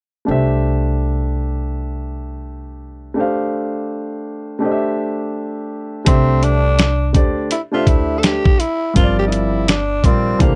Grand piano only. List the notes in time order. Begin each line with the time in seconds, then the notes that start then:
0.25 A3 D4 G4
0.30 C5 E5
3.14 A3 D4 G4
3.19 C5 F5
4.59 A3 D4 G4
4.63 C5 D#5
4.71 E5
6.05 A3 D4 G4 C5 E5
7.13 A3 D4 G4 C5 D5
7.72 A3 D4 G4 C5 E5
8.94 F3 G3 C4 A#4 C5
9.03 D5
10.03 G3 C4 F4 A#4 D5
10.39 E3 A3 D4 G4 C5